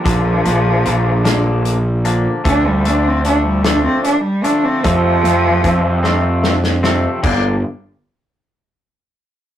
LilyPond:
<<
  \new Staff \with { instrumentName = "Cello" } { \time 6/8 \key g \minor \tempo 4. = 50 f2~ f8 r8 | d'16 g16 d'16 c'16 d'16 g16 d'16 c'16 d'16 g16 d'16 c'16 | f2 r4 | r2. | }
  \new Staff \with { instrumentName = "Clean electric guitar" } { \clef bass \time 6/8 \key g \minor <d f bes d'>8 <d f bes d'>8 <d f bes d'>8 <d f bes d'>8 r8 <d f bes d'>8 | <d f a d'>8 <d f a d'>8 <d f a d'>8 <d f a d'>8 r8 <d f a d'>8 | <c f a c'>8 <c f a c'>8 <c f a c'>8 <c f a c'>8 r8 <c f a c'>8 | <g, d g bes d'>8 r2 r8 | }
  \new Staff \with { instrumentName = "Picked electric bass" } { \clef bass \time 6/8 \key g \minor bes,,8 bes,,8 bes,,2 | d,2 r4 | f,8 f,8 f,2 | g,,8 r2 r8 | }
  \new DrumStaff \with { instrumentName = "Drums" } \drummode { \time 6/8 <hh bd>8 hh8 hh8 <hh sn>8 hh8 hh8 | <hh bd>8 hh8 hh8 <hh sn>8 hh8 hh8 | <hh bd>8 hh8 <hh bd>8 sn8 sn16 sn16 sn8 | <cymc bd>4. r4. | }
>>